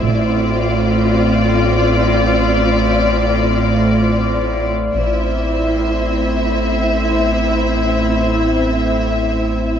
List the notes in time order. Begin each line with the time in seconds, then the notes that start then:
0.04 A1 A2 C4 F4 C5 D5
4.95 A1 A2 C4 E4 C5 E5